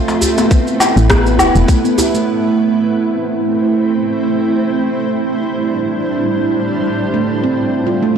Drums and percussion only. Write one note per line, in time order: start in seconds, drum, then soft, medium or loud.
0.08 djembe slap medium
0.08 shaker soft
0.22 djembe bass medium
0.22 shaker medium
0.38 djembe slap medium
0.38 shaker soft
0.51 kick loud
0.51 shaker soft
0.67 shaker soft
0.80 djembe slap medium
0.80 djembe tone medium
0.80 low woodblock medium
0.80 shaker medium
0.97 shaker soft
1.10 kick loud
1.10 cross-stick medium
1.10 shaker soft
1.26 shaker soft
1.39 djembe bass medium
1.39 low woodblock medium
1.39 shaker medium
1.55 shaker soft
1.68 kick loud
1.68 shaker soft
1.85 shaker soft
1.98 djembe tone medium
1.98 djembe bass medium
1.98 shaker medium
2.15 shaker soft